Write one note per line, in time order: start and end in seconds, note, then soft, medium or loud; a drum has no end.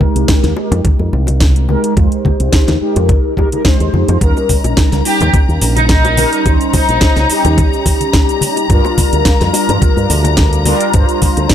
0.00 0.53 G#3 medium
0.00 0.53 D#4 medium
0.00 0.54 G4 medium
0.00 0.54 A#4 medium
0.00 kick medium
0.00 high conga medium
0.15 0.24 C2 medium
0.15 closed hi-hat soft
0.28 kick loud
0.28 snare loud
0.28 closed hi-hat medium
0.28 high bongo soft
0.43 0.52 D#2 medium
0.43 snare soft
0.43 closed hi-hat soft
0.43 high conga medium
0.56 1.65 G#3 medium
0.56 1.66 D#4 medium
0.56 1.66 G4 medium
0.56 1.66 A#4 medium
0.56 high bongo medium
0.71 0.84 F2 medium
0.71 closed hi-hat soft
0.71 low conga loud
0.85 muted fingered electric bass stroke soft
0.85 kick loud
0.85 closed hi-hat medium
0.85 high conga medium
0.99 1.08 F2 medium
0.99 high bongo medium
1.13 1.75 C2 medium
1.13 low conga medium
1.27 closed hi-hat soft
1.27 high bongo medium
1.27 high conga medium
1.40 kick loud
1.40 snare loud
1.40 closed hi-hat medium
1.56 closed hi-hat soft
1.68 1.94 G#3 loud
1.68 1.94 D#4 medium
1.68 1.94 G4 medium
1.68 1.94 A#4 loud
1.68 high bongo soft
1.68 high conga medium
1.84 closed hi-hat soft
1.97 2.06 F2 medium
1.97 kick loud
1.97 closed hi-hat medium
1.97 high bongo medium
2.12 closed hi-hat soft
2.25 kick medium
2.25 high conga medium
2.40 2.48 C2 medium
2.40 closed hi-hat soft
2.40 high bongo soft
2.53 kick loud
2.53 snare loud
2.53 closed hi-hat medium
2.68 2.76 D#2 medium
2.68 snare soft
2.68 closed hi-hat soft
2.68 high bongo medium
2.68 high conga medium
2.81 3.34 G#3 medium
2.81 3.35 D#4 medium
2.81 3.35 G4 medium
2.81 3.35 A#4 medium
2.81 muted fingered electric bass stroke soft
2.96 3.13 F2 medium
2.96 closed hi-hat soft
2.96 low conga medium
3.09 kick loud
3.09 closed hi-hat medium
3.09 high bongo soft
3.09 high conga medium
3.37 3.48 G#3 medium
3.37 3.49 D#4 medium
3.37 3.49 G4 medium
3.37 3.49 A#4 loud
3.37 kick medium
3.37 high bongo medium
3.37 low conga medium
3.52 3.62 G#3 medium
3.52 3.62 D#4 medium
3.52 3.62 G4 medium
3.52 3.62 A#4 loud
3.52 closed hi-hat soft
3.52 high conga medium
3.65 4.18 G#3 medium
3.65 4.18 D#4 medium
3.65 4.18 G4 medium
3.65 4.18 C5 loud
3.65 kick loud
3.65 snare loud
3.65 closed hi-hat medium
3.80 3.88 D#2 medium
3.80 closed hi-hat soft
3.80 high bongo soft
3.93 4.03 F2 medium
3.93 high conga medium
4.08 4.16 F2 medium
4.08 closed hi-hat soft
4.08 high bongo medium
4.08 low conga medium
4.20 4.31 D#2 medium
4.20 5.02 G3 medium
4.20 5.02 C#4 medium
4.20 5.03 D#4 medium
4.20 5.03 A#4 loud
4.20 11.55 A#5 medium
4.20 kick loud
4.20 closed hi-hat medium
4.20 cabasa soft
4.37 high bongo medium
4.37 cabasa soft
4.49 kick medium
4.49 open hi-hat loud
4.49 high conga medium
4.49 cabasa medium
4.64 4.72 A#1 medium
4.64 closed hi-hat soft
4.64 high bongo medium
4.64 cabasa soft
4.77 kick loud
4.77 snare loud
4.77 closed hi-hat medium
4.77 cabasa soft
4.92 5.01 C#2 medium
4.92 snare soft
4.92 closed hi-hat soft
4.92 high conga medium
4.92 cabasa soft
5.04 6.14 G3 medium
5.04 6.14 C#4 medium
5.04 6.15 D#4 medium
5.04 5.27 G4 medium
5.04 6.15 A#4 medium
5.04 open hi-hat loud
5.04 high bongo soft
5.04 cabasa medium
5.20 5.33 D#2 medium
5.20 closed hi-hat soft
5.20 low conga medium
5.20 cabasa soft
5.33 kick loud
5.33 closed hi-hat medium
5.33 high bongo medium
5.33 high conga medium
5.33 cabasa soft
5.49 5.57 D#2 medium
5.49 cabasa soft
5.61 6.24 A#1 medium
5.61 open hi-hat loud
5.61 low conga medium
5.61 cabasa medium
5.76 5.87 D#4 medium
5.76 closed hi-hat soft
5.76 high bongo soft
5.76 high conga medium
5.76 cabasa soft
5.89 6.46 D#4 medium
5.89 kick loud
5.89 snare loud
5.89 closed hi-hat medium
5.89 cabasa soft
6.05 closed hi-hat soft
6.05 high bongo medium
6.05 cabasa soft
6.17 6.42 G3 loud
6.17 6.43 C#4 medium
6.17 6.43 D#4 medium
6.17 6.43 A#4 loud
6.17 open hi-hat loud
6.17 high conga medium
6.17 cabasa medium
6.33 closed hi-hat soft
6.33 cabasa soft
6.45 6.55 D#2 medium
6.45 7.26 G3 medium
6.45 7.27 C#4 medium
6.45 7.27 D#4 medium
6.45 7.27 C5 medium
6.45 kick loud
6.45 closed hi-hat medium
6.45 high bongo soft
6.45 cabasa soft
6.61 closed hi-hat soft
6.61 cabasa soft
6.73 7.52 D#4 medium
6.73 kick medium
6.73 open hi-hat loud
6.73 high bongo medium
6.73 high conga medium
6.73 cabasa medium
6.89 6.97 A#1 medium
6.89 closed hi-hat soft
6.89 cabasa soft
7.01 kick loud
7.01 snare loud
7.01 closed hi-hat medium
7.01 cabasa soft
7.16 7.25 C#2 medium
7.16 snare soft
7.16 closed hi-hat soft
7.16 high bongo soft
7.16 high conga medium
7.16 cabasa soft
7.29 8.66 G3 medium
7.29 8.67 C#4 medium
7.29 8.67 D#4 medium
7.29 8.67 G4 medium
7.29 open hi-hat loud
7.29 cabasa medium
7.45 7.62 D#2 medium
7.45 closed hi-hat medium
7.45 high bongo medium
7.45 low conga medium
7.45 cabasa soft
7.58 kick loud
7.58 closed hi-hat medium
7.58 high conga medium
7.58 cabasa soft
7.73 cabasa soft
7.86 kick medium
7.86 open hi-hat loud
7.86 high bongo soft
7.86 low conga medium
7.86 cabasa medium
8.01 closed hi-hat soft
8.01 high conga medium
8.01 cabasa soft
8.13 kick loud
8.13 snare loud
8.13 closed hi-hat medium
8.13 high bongo medium
8.13 cabasa soft
8.29 closed hi-hat soft
8.29 cabasa soft
8.41 open hi-hat loud
8.41 high conga medium
8.41 cabasa medium
8.56 closed hi-hat medium
8.56 high bongo medium
8.56 cabasa soft
8.69 8.79 G2 medium
8.69 9.50 G3 medium
8.69 9.51 D4 medium
8.69 9.51 F4 medium
8.69 9.51 A#4 loud
8.69 kick loud
8.69 closed hi-hat medium
8.69 cabasa soft
8.85 high bongo medium
8.85 cabasa soft
8.98 kick medium
8.98 open hi-hat loud
8.98 high conga medium
8.98 cabasa medium
9.13 9.21 D2 medium
9.13 closed hi-hat medium
9.13 cabasa soft
9.25 kick loud
9.25 snare loud
9.25 closed hi-hat medium
9.25 high bongo soft
9.25 cabasa soft
9.40 9.49 F2 medium
9.40 snare soft
9.40 closed hi-hat soft
9.40 high conga medium
9.40 cabasa soft
9.53 10.62 G3 medium
9.53 10.63 D4 medium
9.53 10.63 F4 medium
9.53 10.63 A#4 medium
9.53 open hi-hat loud
9.53 high bongo medium
9.53 cabasa medium
9.69 9.81 G2 medium
9.69 closed hi-hat medium
9.69 low conga medium
9.69 cabasa soft
9.82 muted fingered electric bass stroke soft
9.82 kick loud
9.82 closed hi-hat medium
9.82 high conga medium
9.82 cabasa soft
9.97 10.05 G2 medium
9.97 high bongo soft
9.97 cabasa soft
10.09 10.72 D2 medium
10.09 open hi-hat medium
10.09 low conga medium
10.09 cabasa medium
10.24 closed hi-hat medium
10.24 high bongo medium
10.24 high conga medium
10.24 cabasa soft
10.37 kick loud
10.37 snare loud
10.37 closed hi-hat medium
10.37 cabasa soft
10.53 closed hi-hat soft
10.53 cabasa soft
10.65 10.91 G3 loud
10.65 10.91 D4 medium
10.65 10.91 F4 medium
10.65 10.91 A#4 loud
10.65 open hi-hat loud
10.65 high bongo medium
10.65 high conga medium
10.65 cabasa medium
10.80 closed hi-hat medium
10.80 cabasa soft
10.93 11.04 G2 medium
10.93 11.55 G3 medium
10.93 11.55 D4 medium
10.93 11.55 F4 medium
10.93 11.55 C5 medium
10.93 kick loud
10.93 closed hi-hat medium
10.93 high bongo medium
10.93 cabasa soft
11.09 closed hi-hat soft
11.09 cabasa soft
11.22 kick medium
11.22 open hi-hat loud
11.22 high conga medium
11.22 cabasa medium
11.37 11.45 D2 medium
11.37 closed hi-hat medium
11.37 high bongo medium
11.37 cabasa soft
11.49 kick loud
11.49 snare loud
11.49 closed hi-hat medium
11.49 cabasa soft